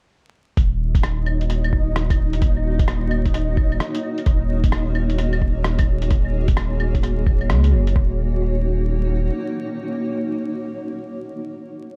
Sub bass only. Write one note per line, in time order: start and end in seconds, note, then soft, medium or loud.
0.57 2.41 D#1 loud
2.42 3.56 D#1 medium
3.57 3.79 D#1 medium
4.26 6.10 D#1 loud
6.11 7.25 D#1 loud
7.27 7.51 D#1 medium
7.49 7.74 C#2 medium
7.73 7.94 F#1 medium
7.96 9.30 D#1 medium